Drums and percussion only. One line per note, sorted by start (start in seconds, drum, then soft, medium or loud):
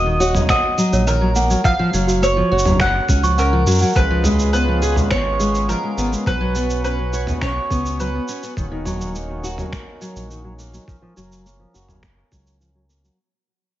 0.21 shaker medium
0.35 mid tom medium
0.35 shaker soft
0.49 finger snap medium
0.49 kick loud
0.49 shaker soft
0.78 shaker medium
0.93 shaker soft
1.07 shaker soft
1.36 shaker medium
1.50 shaker soft
1.64 kick loud
1.64 shaker soft
1.94 shaker medium
2.09 shaker soft
2.23 shaker soft
2.59 shaker medium
2.65 mid tom medium
2.65 shaker soft
2.80 finger snap medium
2.80 kick loud
2.80 shaker soft
3.09 kick loud
3.09 shaker medium
3.24 shaker soft
3.38 shaker soft
3.67 shaker medium
3.71 shaker medium
3.74 shaker medium
3.78 shaker soft
3.82 shaker soft
3.85 shaker soft
3.89 shaker soft
3.92 kick loud
3.92 shaker soft
3.96 shaker soft
4.24 mid tom medium
4.24 shaker medium
4.39 shaker soft
4.54 shaker soft
4.83 shaker medium
4.96 mid tom medium
4.96 shaker soft
5.11 finger snap medium
5.11 kick loud
5.11 shaker soft
5.40 shaker medium
5.55 shaker soft
5.70 shaker soft
5.98 shaker medium
6.13 shaker soft
6.26 kick loud
6.26 shaker soft
6.56 shaker medium
6.70 shaker soft
6.85 shaker soft
7.14 shaker medium
7.27 mid tom medium
7.27 shaker soft
7.41 finger snap medium
7.41 kick loud
7.41 shaker soft
7.70 kick loud
7.70 shaker medium
7.86 shaker soft
8.00 shaker soft
8.28 shaker medium
8.43 shaker soft
8.57 kick loud
8.57 shaker soft
8.86 mid tom medium
8.86 shaker medium
9.01 shaker soft
9.15 shaker soft
9.44 shaker medium
9.58 mid tom medium
9.58 shaker soft
9.72 finger snap medium
9.72 kick loud
9.72 shaker soft
10.02 shaker medium
10.16 shaker soft
10.31 shaker soft
10.59 shaker medium
10.74 shaker soft
10.88 kick loud
10.88 shaker soft
11.17 shaker medium
11.32 shaker soft
11.46 shaker soft
11.75 shaker medium
11.88 mid tom medium
11.88 shaker soft
12.03 finger snap medium
12.03 kick loud
12.03 shaker soft
12.32 kick medium
12.32 shaker medium
12.47 shaker soft
12.61 shaker soft
12.90 shaker medium
13.04 shaker soft